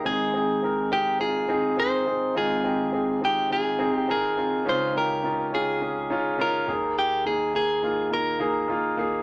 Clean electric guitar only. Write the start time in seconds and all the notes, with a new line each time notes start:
0.06 G#4
0.93 G4
1.21 G#4
1.80 C5
2.38 G#4
3.25 G4
3.53 G#4
3.95 G4
4.11 G#4
4.69 C5
4.98 A#4
5.55 G#4
6.41 A#4
6.99 G4
7.27 G#4
7.56 G#4
8.13 A#4